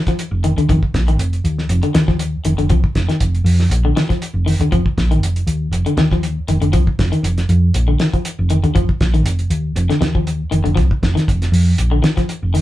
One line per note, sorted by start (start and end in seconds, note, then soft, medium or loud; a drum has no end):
0.07 0.20 F3 medium
0.07 kick medium
0.07 snare soft
0.07 closed hi-hat soft
0.19 closed hi-hat medium
0.31 0.51 F1 medium
0.44 0.51 D#3 medium
0.44 closed hi-hat soft
0.57 0.66 D#2 medium
0.57 0.63 D3 medium
0.57 closed hi-hat soft
0.69 0.80 F1 loud
0.69 0.82 D#3 loud
0.69 kick medium
0.69 closed hi-hat medium
0.82 muted fingered electric bass stroke soft
0.82 kick medium
0.94 1.19 A#1 medium
0.94 kick medium
0.94 snare medium
0.94 closed hi-hat soft
1.08 1.21 D#3 medium
1.08 closed hi-hat soft
1.19 1.39 F1 medium
1.19 closed hi-hat medium
1.33 closed hi-hat soft
1.44 1.64 D#2 medium
1.44 closed hi-hat soft
1.58 snare soft
1.69 1.80 F1 loud
1.69 closed hi-hat medium
1.83 1.89 D3 medium
1.83 closed hi-hat soft
1.95 2.35 D#2 medium
1.95 2.01 D#3 medium
1.95 snare medium
1.95 closed hi-hat medium
2.08 2.21 F3 medium
2.08 kick medium
2.08 snare soft
2.19 closed hi-hat medium
2.45 2.55 F1 medium
2.45 2.52 D#3 medium
2.45 closed hi-hat medium
2.58 2.67 F1 medium
2.58 2.64 D3 medium
2.58 closed hi-hat soft
2.70 2.81 C2 medium
2.70 2.83 F3 loud
2.70 kick medium
2.70 closed hi-hat medium
2.84 kick medium
2.95 3.06 F1 medium
2.95 kick medium
2.95 snare medium
2.95 closed hi-hat soft
3.09 3.21 D#3 medium
3.09 snare soft
3.09 closed hi-hat soft
3.20 3.40 F1 medium
3.20 kick medium
3.20 closed hi-hat medium
3.35 closed hi-hat soft
3.44 3.65 F2 medium
3.44 open hi-hat medium
3.60 snare soft
3.69 3.90 A#1 loud
3.69 closed hi-hat medium
3.85 3.91 D3 medium
3.96 4.03 D#3 medium
3.96 snare medium
3.96 closed hi-hat soft
4.09 4.22 F3 medium
4.09 kick medium
4.09 snare soft
4.09 closed hi-hat soft
4.22 closed hi-hat medium
4.34 4.54 F1 medium
4.46 4.53 D#3 medium
4.46 open hi-hat medium
4.59 4.69 D#2 medium
4.59 4.66 D3 medium
4.59 closed hi-hat soft
4.72 4.82 F1 medium
4.72 4.85 F3 medium
4.72 kick medium
4.72 closed hi-hat medium
4.85 muted fingered electric bass stroke soft
4.85 kick medium
4.97 5.21 A#1 medium
4.97 kick medium
4.97 snare medium
4.97 closed hi-hat soft
5.11 5.24 D#3 medium
5.11 closed hi-hat soft
5.21 5.41 F1 medium
5.21 closed hi-hat medium
5.36 closed hi-hat soft
5.47 5.67 D#2 medium
5.47 closed hi-hat soft
5.71 5.82 F1 medium
5.71 closed hi-hat medium
5.86 5.92 D3 medium
5.86 closed hi-hat soft
5.97 6.37 D#2 medium
5.97 6.05 D#3 medium
5.97 snare medium
5.97 closed hi-hat soft
6.11 6.25 F3 medium
6.11 kick medium
6.11 snare soft
6.23 closed hi-hat medium
6.48 6.59 F1 medium
6.48 6.55 D#3 medium
6.48 closed hi-hat soft
6.61 6.70 F1 medium
6.61 6.67 D3 medium
6.61 closed hi-hat soft
6.73 6.84 C2 medium
6.73 6.86 F3 loud
6.73 kick medium
6.73 closed hi-hat medium
6.87 kick medium
6.99 7.09 F1 medium
6.99 kick medium
6.99 snare medium
6.99 closed hi-hat soft
7.12 7.25 D#3 medium
7.12 closed hi-hat soft
7.23 7.43 F1 medium
7.23 closed hi-hat medium
7.38 snare soft
7.38 closed hi-hat soft
7.49 7.69 F2 medium
7.49 closed hi-hat medium
7.74 7.94 A#1 loud
7.74 closed hi-hat medium
7.88 7.94 D3 medium
8.00 8.07 D#3 medium
8.00 snare medium
8.00 closed hi-hat medium
8.13 8.26 F3 medium
8.13 kick medium
8.13 closed hi-hat soft
8.25 closed hi-hat medium
8.39 8.58 F1 medium
8.50 8.57 D#3 medium
8.50 closed hi-hat medium
8.63 8.73 D#2 medium
8.63 8.69 D3 medium
8.63 closed hi-hat soft
8.75 8.86 F1 medium
8.75 8.88 F3 loud
8.75 kick medium
8.75 closed hi-hat medium
8.89 muted fingered electric bass stroke soft
8.89 kick medium
9.01 9.25 A#1 medium
9.01 kick medium
9.01 snare medium
9.01 closed hi-hat soft
9.14 9.27 D#3 medium
9.14 closed hi-hat soft
9.25 9.46 F1 medium
9.25 closed hi-hat medium
9.39 closed hi-hat soft
9.50 9.70 D#2 medium
9.50 closed hi-hat medium
9.76 9.87 F1 medium
9.76 closed hi-hat medium
9.90 9.95 D3 medium
9.90 snare soft
9.90 closed hi-hat soft
10.01 10.41 D#2 medium
10.01 10.08 D#3 medium
10.01 snare medium
10.01 closed hi-hat soft
10.15 10.28 F3 medium
10.15 kick medium
10.27 closed hi-hat medium
10.51 10.62 F1 medium
10.51 10.58 D#3 medium
10.51 closed hi-hat soft
10.64 10.74 F1 medium
10.64 10.70 D3 medium
10.64 closed hi-hat soft
10.76 10.88 C2 medium
10.76 10.89 F3 medium
10.76 kick medium
10.76 snare soft
10.76 closed hi-hat medium
10.91 kick medium
11.03 11.13 F1 medium
11.03 kick medium
11.03 snare medium
11.03 closed hi-hat soft
11.15 11.28 D#3 medium
11.15 snare soft
11.15 closed hi-hat soft
11.28 11.48 F1 medium
11.28 kick medium
11.28 closed hi-hat medium
11.42 snare soft
11.42 closed hi-hat soft
11.52 11.72 F2 medium
11.52 open hi-hat medium
11.78 11.98 A#1 medium
11.78 closed hi-hat medium
11.91 11.97 D3 medium
12.03 12.10 D#3 medium
12.03 snare medium
12.03 closed hi-hat medium
12.17 12.30 F3 medium
12.17 kick medium
12.17 snare soft
12.17 closed hi-hat soft
12.29 closed hi-hat medium
12.43 12.61 F1 medium
12.54 12.61 D#3 medium
12.54 open hi-hat medium